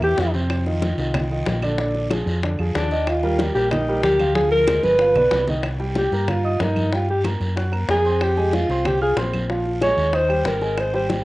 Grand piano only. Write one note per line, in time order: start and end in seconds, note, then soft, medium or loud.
0.02 0.28 E3 medium
0.02 0.28 E4 medium
0.02 0.29 G4 medium
0.34 0.60 C3 medium
0.34 0.60 C4 medium
0.34 0.61 C5 medium
0.66 0.93 D#3 medium
0.66 0.93 D#4 medium
0.66 0.93 F4 medium
0.99 1.25 D#3 medium
0.99 1.25 D#4 medium
0.99 1.25 F4 medium
1.31 1.57 D#3 medium
1.31 1.57 D#4 medium
1.31 1.57 F4 medium
1.63 1.76 D3 medium
1.63 1.76 D4 medium
1.63 1.76 D5 medium
1.79 2.05 D3 medium
1.79 2.05 D4 medium
1.79 2.06 D5 medium
2.11 2.37 F3 medium
2.11 2.37 F4 medium
2.11 2.37 G#4 medium
2.44 2.56 D3 medium
2.44 2.57 D4 medium
2.44 2.57 D5 medium
2.59 2.85 F3 medium
2.59 2.85 F4 medium
2.59 2.86 G#4 medium
2.91 3.18 D#3 medium
2.91 3.18 D#4 medium
2.91 3.18 D#5 medium
3.23 3.50 G3 medium
3.23 3.50 G4 medium
3.23 3.50 A#4 medium
3.56 3.82 G3 medium
3.56 3.82 G4 medium
3.56 3.82 A#4 medium
3.89 4.14 G3 medium
3.89 4.15 G4 medium
3.89 4.15 A#4 medium
4.19 4.33 F3 medium
4.19 4.33 F4 medium
4.19 4.33 F5 medium
4.35 4.62 F3 medium
4.35 4.62 F4 medium
4.35 4.62 F5 medium
4.68 4.94 G#3 medium
4.68 4.94 G#4 medium
4.68 4.94 C5 medium
5.00 5.13 F3 medium
5.00 5.13 F4 medium
5.00 5.13 F5 medium
5.16 5.42 B3 medium
5.16 5.42 B4 medium
5.16 5.42 D5 medium
5.49 5.61 D#3 medium
5.49 5.62 D#4 medium
5.49 5.62 D#5 medium
5.79 6.06 G3 medium
5.79 6.06 G4 medium
5.79 6.06 G5 medium
6.12 6.39 A#3 medium
6.12 6.39 A#4 medium
6.12 6.39 A#5 medium
6.44 6.57 D#4 medium
6.44 6.57 D#5 medium
6.44 6.58 D#6 medium
6.61 6.87 A#3 medium
6.61 6.87 A#4 medium
6.61 6.87 A#5 medium
6.93 7.19 G3 medium
6.93 7.19 G4 medium
6.93 7.19 G5 medium
7.24 7.51 A#3 medium
7.24 7.51 A#4 medium
7.24 7.51 A#5 medium
7.56 7.69 F#4 medium
7.56 7.70 F#5 medium
7.56 7.70 F#6 medium
7.72 7.99 A#3 medium
7.72 7.99 A#4 medium
7.72 7.99 A#5 medium
8.05 8.31 C4 medium
8.05 8.31 C5 medium
8.05 8.32 C6 medium
8.37 8.63 G#3 medium
8.37 8.63 G#4 medium
8.37 8.64 G#5 medium
8.70 8.96 C4 medium
8.70 8.96 C5 medium
8.70 8.96 C6 medium
9.01 9.14 F4 medium
9.01 9.14 F5 medium
9.01 9.15 F6 medium
9.17 9.43 C4 medium
9.17 9.43 C5 medium
9.17 9.44 C6 medium
9.49 9.76 F3 medium
9.49 9.76 F4 medium
9.49 9.76 F5 medium
9.81 10.08 G#3 medium
9.81 10.08 G#4 medium
9.81 10.08 G#5 medium
10.13 10.27 D#4 medium
10.13 10.27 D#5 medium
10.13 10.27 D#6 medium
10.29 10.55 G3 medium
10.29 10.56 G4 medium
10.29 10.56 G5 medium
10.61 10.88 G#3 medium
10.61 10.88 G#4 medium
10.61 10.88 G#5 medium
10.94 11.20 G3 medium
10.94 11.20 G4 medium
10.94 11.20 G5 medium